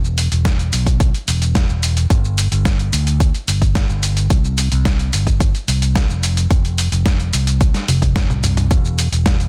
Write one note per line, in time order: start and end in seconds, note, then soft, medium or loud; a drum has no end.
0.00 0.27 E1 loud
0.04 shaker soft
0.18 open hi-hat loud
0.18 shaker medium
0.32 0.69 E1 medium
0.32 closed hi-hat soft
0.32 shaker soft
0.45 kick loud
0.45 snare loud
0.45 closed hi-hat medium
0.45 shaker soft
0.59 closed hi-hat soft
0.59 shaker soft
0.73 1.10 B1 medium
0.73 open hi-hat medium
0.73 shaker medium
0.86 kick medium
0.86 closed hi-hat medium
0.86 shaker soft
1.00 kick loud
1.00 closed hi-hat medium
1.00 shaker soft
1.14 closed hi-hat soft
1.14 shaker soft
1.28 1.65 E1 medium
1.28 open hi-hat loud
1.28 shaker medium
1.42 closed hi-hat soft
1.42 shaker soft
1.55 kick loud
1.55 snare loud
1.55 closed hi-hat medium
1.55 shaker soft
1.69 2.06 E1 medium
1.69 shaker soft
1.83 open hi-hat medium
1.83 shaker medium
1.97 closed hi-hat medium
1.97 shaker soft
2.10 2.48 G1 loud
2.10 kick loud
2.10 closed hi-hat medium
2.10 shaker soft
2.25 shaker soft
2.38 open hi-hat loud
2.38 shaker medium
2.51 2.89 G1 medium
2.51 closed hi-hat soft
2.51 shaker soft
2.65 kick loud
2.65 snare loud
2.65 closed hi-hat medium
2.65 shaker soft
2.79 closed hi-hat soft
2.79 shaker soft
2.93 3.30 D2 medium
2.93 open hi-hat medium
2.93 shaker medium
3.07 closed hi-hat medium
3.07 shaker soft
3.20 kick loud
3.20 closed hi-hat medium
3.20 shaker soft
3.34 muted fingered electric bass stroke soft
3.34 closed hi-hat soft
3.34 shaker soft
3.48 3.85 G1 medium
3.48 open hi-hat loud
3.48 shaker medium
3.62 kick medium
3.62 closed hi-hat medium
3.62 shaker soft
3.75 kick loud
3.75 snare loud
3.75 closed hi-hat medium
3.75 shaker soft
3.89 4.26 G1 medium
3.89 shaker soft
4.03 open hi-hat medium
4.03 shaker medium
4.17 closed hi-hat medium
4.17 shaker soft
4.30 4.68 C2 loud
4.30 kick loud
4.30 closed hi-hat medium
4.30 shaker soft
4.44 shaker soft
4.58 open hi-hat loud
4.58 shaker medium
4.72 5.09 C2 medium
4.72 closed hi-hat medium
4.72 shaker soft
4.85 kick loud
4.85 snare loud
4.85 closed hi-hat medium
4.85 shaker soft
4.99 closed hi-hat soft
4.99 shaker soft
5.13 5.51 G1 medium
5.13 open hi-hat medium
5.13 shaker medium
5.27 kick medium
5.27 closed hi-hat medium
5.27 shaker soft
5.40 kick loud
5.40 closed hi-hat medium
5.40 shaker soft
5.55 closed hi-hat soft
5.55 shaker soft
5.68 6.05 C2 medium
5.68 open hi-hat loud
5.68 shaker medium
5.82 closed hi-hat medium
5.82 shaker soft
5.95 kick loud
5.95 snare loud
5.95 closed hi-hat medium
5.95 shaker soft
6.09 6.47 F1 medium
6.09 shaker soft
6.23 open hi-hat medium
6.23 shaker medium
6.37 closed hi-hat medium
6.37 shaker soft
6.51 6.88 F1 loud
6.51 kick loud
6.51 closed hi-hat medium
6.51 shaker soft
6.65 closed hi-hat soft
6.65 shaker soft
6.78 open hi-hat loud
6.78 shaker medium
6.92 7.29 F1 medium
6.92 closed hi-hat medium
6.92 shaker soft
7.06 kick loud
7.06 snare loud
7.06 closed hi-hat medium
7.06 shaker soft
7.20 closed hi-hat soft
7.20 shaker soft
7.33 7.71 C2 medium
7.33 open hi-hat medium
7.33 shaker medium
7.47 closed hi-hat medium
7.47 shaker soft
7.61 kick loud
7.61 closed hi-hat medium
7.61 shaker soft
7.74 muted fingered electric bass stroke soft
7.74 snare soft
7.74 closed hi-hat soft
7.74 shaker soft
7.88 8.26 F1 medium
7.88 open hi-hat loud
7.88 high tom medium
7.88 shaker medium
8.02 kick medium
8.02 closed hi-hat medium
8.02 high tom medium
8.02 shaker soft
8.16 kick loud
8.16 snare loud
8.16 closed hi-hat medium
8.16 mid tom medium
8.16 shaker soft
8.29 8.67 C2 medium
8.29 mid tom medium
8.29 shaker soft
8.44 mid tom medium
8.44 open hi-hat medium
8.44 shaker medium
8.57 closed hi-hat medium
8.57 mid tom medium
8.57 shaker soft
8.71 9.08 E1 loud
8.71 kick loud
8.71 closed hi-hat medium
8.71 shaker soft
8.85 shaker soft
8.99 open hi-hat loud
8.99 shaker medium
9.12 9.48 E1 medium
9.12 closed hi-hat medium
9.12 shaker soft
9.26 kick loud
9.26 snare loud
9.26 closed hi-hat medium
9.26 shaker soft
9.40 closed hi-hat soft
9.40 shaker soft